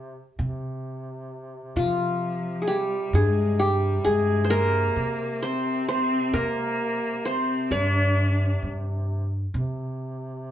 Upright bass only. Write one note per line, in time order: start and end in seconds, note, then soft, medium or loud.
0.39 1.59 C3 loud
1.76 2.96 C3 medium
3.13 3.94 G2 loud
4.05 4.85 G2 medium
4.96 6.17 C3 loud
6.33 7.54 C3 medium
7.71 8.51 G2 loud
8.62 9.43 G2 medium
9.54 10.51 C3 loud